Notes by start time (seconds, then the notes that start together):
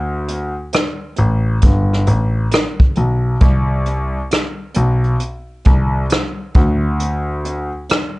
Already playing: D2
0.28 closed hi-hat
0.73 cross-stick, closed hi-hat
1.16 A1, closed hi-hat
1.62 G1, kick, closed hi-hat
1.93 cross-stick
2.07 A1, closed hi-hat
2.51 cross-stick, closed hi-hat
2.80 kick
2.95 B1, closed hi-hat
3.40 C2, kick, closed hi-hat
3.86 closed hi-hat
4.31 cross-stick, closed hi-hat
4.74 B1, closed hi-hat
5.04 closed hi-hat
5.20 closed hi-hat
5.65 C2, kick, closed hi-hat
6.10 cross-stick, closed hi-hat
6.54 D2, kick, closed hi-hat
7.00 closed hi-hat
7.45 closed hi-hat
7.89 cross-stick, closed hi-hat